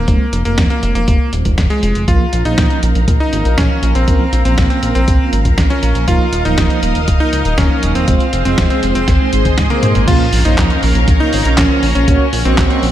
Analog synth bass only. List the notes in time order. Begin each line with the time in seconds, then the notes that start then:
0.08 F1
0.33 F1
0.46 F1
0.58 F1
0.83 F1
0.95 F1
1.08 F1
1.33 D#1
1.45 F1
1.58 F1
1.83 F1
1.95 F1
2.08 A#1
2.33 A#1
2.45 A#1
2.58 A#1
2.83 A#1
2.95 A#1
3.08 A#1
3.33 G#1
3.45 A#1
3.58 A#1
3.83 A#1
3.95 A#1
4.08 A#1
4.33 A#1
4.45 A#1
4.58 A#1
4.83 A#1
4.95 A#1
5.08 A#1
5.33 G#1
5.45 A#1
5.58 A#1
5.83 A#1
5.95 A#1
6.08 D#1
6.33 D#1
6.45 D#1
6.58 D#1
6.83 D#1
6.95 D#1
7.08 D#1
7.33 C#2
7.45 D#1
7.58 D#1
7.83 D#1
7.95 D#1
8.08 F1
8.33 F1
8.45 F1
8.58 F1
8.83 F1
8.95 F1
9.08 G#1
9.33 G#1
9.45 G#1
9.58 G#2
9.83 G#2
9.95 G#1
10.08 A#1
10.33 A#1
10.45 A#1
10.58 A#1
10.83 A#1
10.95 A#1
11.08 A#1
11.33 G#1
11.45 A#1
11.58 A#1
11.83 A#1
11.95 A#1
12.08 A#1
12.33 A#1
12.45 A#1
12.58 A#1
12.83 A#1